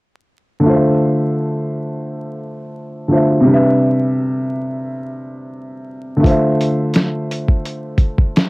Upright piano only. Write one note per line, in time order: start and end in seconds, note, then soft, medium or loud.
0.60 3.03 D3 medium
0.60 3.05 A3 medium
0.66 3.06 F4 medium
0.66 3.08 C5 medium
0.73 3.10 E5 medium
3.08 3.44 D3 soft
3.08 3.45 A3 soft
3.08 3.46 F4 soft
3.12 3.46 C5 soft
3.12 3.47 E5 medium
3.40 6.18 C3 medium
3.40 6.20 G3 medium
3.47 6.21 D4 medium
3.47 6.23 B4 medium
3.53 6.25 E5 medium
6.17 8.49 D3 medium
6.17 8.49 A3 medium
6.23 8.49 F4 medium
6.23 8.49 C5 medium
6.30 8.49 E5 medium